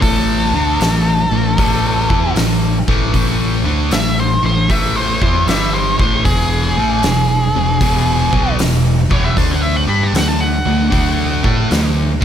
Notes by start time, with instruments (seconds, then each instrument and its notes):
0.01 picked electric bass A1, distorted electric guitar A2 E3 A3, lead electric guitar A4, kick, open hi-hat
0.51 picked electric bass D2, distorted electric guitar D3 A3
0.55 distorted electric guitar D4
0.79 picked electric bass A1, distorted electric guitar A2 E3, snare, open hi-hat
1.31 picked electric bass A1, distorted electric guitar A2 E3
1.57 picked electric bass A1, distorted electric guitar A2 E3 A3, kick, open hi-hat
2.09 picked electric bass E2, distorted electric guitar E3 B3 E4, kick
2.33 picked electric bass A1, distorted electric guitar A2 E3, open hi-hat
2.37 snare
2.88 picked electric bass A1, distorted electric guitar A2 E3 A3, kick
3.13 picked electric bass A1, distorted electric guitar A2 E3 A3, kick, open hi-hat
3.64 picked electric bass D2, distorted electric guitar D3 A3 D4
3.91 picked electric bass A1, distorted electric guitar A2 E3, lead electric guitar E5, snare, open hi-hat
4.20 lead electric guitar C5
4.43 picked electric bass A1, distorted electric guitar A2 E3, lead electric guitar C5
4.68 picked electric bass A1, distorted electric guitar A2 E3 A3, lead electric guitar E5, kick, open hi-hat
4.96 lead electric guitar C5
5.21 picked electric bass E2, distorted electric guitar E3 B3 E4, lead electric guitar C5, kick
5.47 picked electric bass G1, distorted electric guitar G2 D3 G3, lead electric guitar E5, snare, open hi-hat
5.73 lead electric guitar C5
5.99 picked electric bass A1, distorted electric guitar A2 E3 A3, lead electric guitar C5, kick
6.25 picked electric bass E1, distorted electric guitar E2 B2 E3, lead electric guitar G#4, kick, open hi-hat
6.76 picked electric bass A1, distorted electric guitar A2 E3 A3
7.02 picked electric bass E1, distorted electric guitar E2 B2, snare, open hi-hat
7.54 picked electric bass E1, distorted electric guitar E2 B2
7.81 picked electric bass E1, distorted electric guitar E2 B2 E3, kick, open hi-hat
8.31 picked electric bass B1, distorted electric guitar B2 F#3 B3, kick
8.58 picked electric bass E1, distorted electric guitar E2 B2, snare, open hi-hat
9.09 picked electric bass E1, distorted electric guitar E2 B2 E3, lead electric guitar C#5, kick
9.25 lead electric guitar E5
9.36 picked electric bass D2, distorted electric guitar D3 A3 D4, lead electric guitar A5, kick, open hi-hat
9.51 lead electric guitar F#5
9.62 lead electric guitar E5
9.76 lead electric guitar F#5
9.87 picked electric bass G2, distorted electric guitar G3 D4 G4, lead electric guitar B5
10.04 lead electric guitar A5
10.13 picked electric bass D2, distorted electric guitar D3 A3, lead electric guitar F#5, snare, open hi-hat
10.28 lead electric guitar A5
10.41 lead electric guitar F#5
10.66 picked electric bass D2, distorted electric guitar D3 A3
10.91 picked electric bass D2, distorted electric guitar D3 A3 D4, kick, open hi-hat
11.43 picked electric bass A2, distorted electric guitar A3 E4 A4, kick
11.70 picked electric bass D2, distorted electric guitar D3 A3, snare, open hi-hat
12.21 distorted electric guitar D3